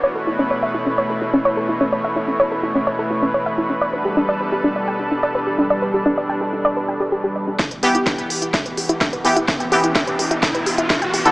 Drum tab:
HH |----------------|----------------|----------------|----------------|
SD |----------------|----------------|----------------|----------------|
BD |----------------|----------------|----------------|----------------|

HH |xxoxxxoxxxoxxxox|xxoxxxoxxxoxxxox|
SD |o---o---o---o---|o---o---o---o---|
BD |o---o---o---o---|o---o---o---o---|